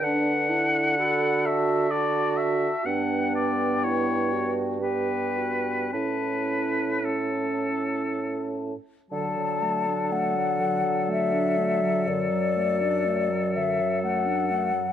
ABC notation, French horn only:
X:1
M:3/4
L:1/8
Q:1/4=61
K:D
V:1 name="French horn"
D E F2 F2 | B,4 B,2 | C2 C3 z | F,6- |
F,6 |]